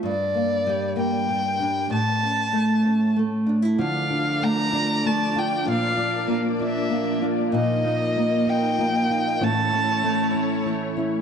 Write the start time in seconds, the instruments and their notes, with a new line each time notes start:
0.03 nylon-string guitar G2
0.07 violin D5
0.34 nylon-string guitar A#3
0.67 nylon-string guitar G3
0.96 nylon-string guitar A#3, violin G5
1.29 nylon-string guitar G3
1.60 nylon-string guitar D4
1.90 nylon-string guitar A2, violin A5
2.23 nylon-string guitar C#4
2.53 nylon-string guitar A3
2.84 nylon-string guitar C#4
3.16 nylon-string guitar A3
3.46 nylon-string guitar D4
3.62 nylon-string guitar E4
3.78 nylon-string guitar D3, steel-string acoustic guitar F3 D4, string section A3 D4 F4 D5, violin F5
4.10 steel-string acoustic guitar F3, nylon-string guitar D4
4.42 steel-string acoustic guitar A3, nylon-string guitar A3, violin A#5
4.73 nylon-string guitar D4, steel-string acoustic guitar D4
5.04 steel-string acoustic guitar F3, nylon-string guitar A3, violin A5
5.35 steel-string acoustic guitar D4, nylon-string guitar F4, violin G5
5.65 nylon-string guitar A#2, steel-string acoustic guitar F3 D4, string section A#3
5.71 violin F5
5.98 steel-string acoustic guitar F3, nylon-string guitar D4
6.27 nylon-string guitar A#3, steel-string acoustic guitar A#3
6.59 nylon-string guitar D4, steel-string acoustic guitar D4, violin E5
6.90 steel-string acoustic guitar F3, nylon-string guitar A#3
7.22 steel-string acoustic guitar D4, nylon-string guitar F4
7.52 nylon-string guitar A#2, steel-string acoustic guitar F3 D#4, string section D#4 D#5, violin D#5
7.84 steel-string acoustic guitar F3, nylon-string guitar D#4
8.16 steel-string acoustic guitar A#3, nylon-string guitar A#3
8.47 nylon-string guitar D#4, steel-string acoustic guitar D#4, violin G5
8.79 steel-string acoustic guitar F3, nylon-string guitar A#3
9.09 steel-string acoustic guitar D#4, nylon-string guitar F4
9.40 nylon-string guitar A2, steel-string acoustic guitar E3 C#4, string section A3 C#4 E4 C#5, violin A5
9.72 steel-string acoustic guitar E3, nylon-string guitar C#4
10.04 steel-string acoustic guitar A3, nylon-string guitar A3
10.34 steel-string acoustic guitar C#4, nylon-string guitar C#4
10.66 steel-string acoustic guitar E3, nylon-string guitar A3
10.97 steel-string acoustic guitar C#4, nylon-string guitar E4